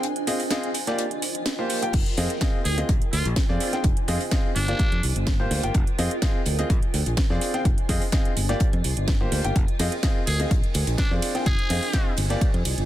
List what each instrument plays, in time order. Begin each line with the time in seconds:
Already playing: ambient pad F4 C5 G#5
0.03 closed hi-hat
0.16 closed hi-hat
0.27 grand piano C4 F4 G#4 D#5, closed hi-hat, open hi-hat
0.40 closed hi-hat, open hi-hat
0.51 grand piano C4 F4 G#4 D#5, snare, closed hi-hat
0.63 closed hi-hat
0.74 closed hi-hat, open hi-hat
0.87 grand piano A#3 F4 G4 D5, snare, closed hi-hat
0.98 closed hi-hat
1.11 closed hi-hat
1.17 ambient pad A#4
1.22 closed hi-hat, open hi-hat
1.35 closed hi-hat
1.46 snare, closed hi-hat
1.59 grand piano A#3 F4 G4 C5
1.70 open hi-hat
1.82 grand piano A#3 F4 G4 G5, closed hi-hat
1.93 fingered electric bass F1, kick, closed hi-hat, crash
2.06 closed hi-hat
2.17 fingered electric bass F2, grand piano C4 F4 G#4 D#5, closed hi-hat, open hi-hat
2.30 ambient pad G#5, closed hi-hat
2.41 grand piano C4 F4 G#4 D#5, kick, snare, closed hi-hat
2.65 fingered electric bass D2, muted trumpet G#4, closed hi-hat, open hi-hat
2.78 grand piano C4 F4 G#4 D#5, closed hi-hat
2.89 fingered electric bass A#1, kick, closed hi-hat
3.02 closed hi-hat
3.13 fingered electric bass D2, muted trumpet F4, closed hi-hat, open hi-hat
3.25 fingered electric bass A#1, closed hi-hat
3.36 kick, snare, closed hi-hat
3.48 fingered electric bass F2, grand piano C4 F4 G#4 D5, snare
3.60 ambient pad F4, closed hi-hat, open hi-hat
3.73 grand piano C4 F4 G#4 G5, snare, closed hi-hat
3.84 fingered electric bass F1, kick, closed hi-hat
3.97 closed hi-hat
4.08 fingered electric bass F2, grand piano C4 F4 G#4 D#5, closed hi-hat, open hi-hat
4.20 closed hi-hat, open hi-hat
4.31 grand piano C4 F4 G#4 D#5, kick, snare, closed hi-hat
4.56 fingered electric bass G1, muted trumpet D4, closed hi-hat, open hi-hat
4.68 grand piano A#3 F4 G4 D5, snare, closed hi-hat
4.79 kick, closed hi-hat
4.92 fingered electric bass F2, closed hi-hat
5.03 fingered electric bass C2, closed hi-hat, open hi-hat
5.10 ambient pad A#4
5.16 fingered electric bass G1, closed hi-hat
5.27 kick, snare, closed hi-hat
5.40 grand piano A#3 F4 G4 C5
5.51 fingered electric bass D2, open hi-hat
5.63 fingered electric bass G1, grand piano A#3 F4 G4 G5, closed hi-hat
5.74 fingered electric bass F1, kick, closed hi-hat
5.87 closed hi-hat
5.99 fingered electric bass F2, grand piano C4 F4 G#4 D#5, closed hi-hat, open hi-hat
6.11 closed hi-hat
6.18 ambient pad G#5, snare
6.22 grand piano C4 F4 G#4 D#5, kick, snare, closed hi-hat
6.46 fingered electric bass D2, closed hi-hat, open hi-hat
6.59 grand piano C4 F4 G#4 D#5, closed hi-hat
6.70 fingered electric bass A#1, kick, closed hi-hat
6.83 closed hi-hat
6.94 fingered electric bass D2, closed hi-hat, open hi-hat
7.06 fingered electric bass A#1, closed hi-hat
7.17 kick, snare, closed hi-hat
7.30 fingered electric bass F2, grand piano C4 F4 G#4 D5, snare
7.41 ambient pad F4, closed hi-hat, open hi-hat
7.54 grand piano C4 F4 G#4 G5, snare, closed hi-hat
7.65 fingered electric bass F1, kick, closed hi-hat
7.78 closed hi-hat
7.89 fingered electric bass F2, grand piano C4 F4 G#4 D#5, kick, closed hi-hat, open hi-hat
8.02 closed hi-hat, open hi-hat
8.12 grand piano C4 F4 G#4 D#5, kick, snare, closed hi-hat
8.25 closed hi-hat
8.37 fingered electric bass G1, closed hi-hat, open hi-hat
8.49 grand piano A#3 F4 G4 D5, snare, closed hi-hat
8.60 kick, closed hi-hat
8.73 fingered electric bass F2, closed hi-hat
8.80 ambient pad A#4
8.84 fingered electric bass C2, closed hi-hat, open hi-hat
8.97 fingered electric bass G1, closed hi-hat
9.08 kick, snare, closed hi-hat
9.21 grand piano A#3 F4 G4 C5
9.32 fingered electric bass D2, open hi-hat
9.44 fingered electric bass G1, grand piano A#3 F4 G4 G5, closed hi-hat
9.56 fingered electric bass F1, kick, closed hi-hat
9.68 closed hi-hat
9.79 fingered electric bass F2, grand piano C4 F4 G#4 D#5, closed hi-hat, open hi-hat, ride
9.92 closed hi-hat
9.99 ambient pad G#5
10.03 grand piano C4 F4 G#4 D#5, kick, snare, closed hi-hat
10.27 fingered electric bass D2, muted trumpet G#4, closed hi-hat, open hi-hat, ride
10.40 grand piano C4 F4 G#4 D#5, closed hi-hat
10.51 fingered electric bass A#1, kick, closed hi-hat
10.64 closed hi-hat
10.74 fingered electric bass D2, closed hi-hat, open hi-hat, ride
10.87 fingered electric bass A#1, closed hi-hat
10.98 muted trumpet D4, kick, snare, closed hi-hat
11.11 fingered electric bass F2, grand piano C4 F4 G#4 D5, snare
11.22 ambient pad F4, closed hi-hat, open hi-hat, ride
11.35 grand piano C4 F4 G#4 G5, snare, closed hi-hat
11.46 fingered electric bass F1, muted trumpet G#4, kick, closed hi-hat
11.59 closed hi-hat
11.70 fingered electric bass F2, grand piano C4 F4 G#4 D#5, closed hi-hat, open hi-hat, ride
11.82 closed hi-hat, open hi-hat
11.93 grand piano C4 F4 G#4 D#5, kick, snare, closed hi-hat
12.17 fingered electric bass G1, closed hi-hat, open hi-hat, ride
12.30 grand piano A#3 F4 G4 D5, snare, closed hi-hat
12.41 kick, closed hi-hat
12.54 fingered electric bass F2, ambient pad A#4, closed hi-hat
12.65 fingered electric bass C2, closed hi-hat, open hi-hat, ride
12.78 fingered electric bass G1, closed hi-hat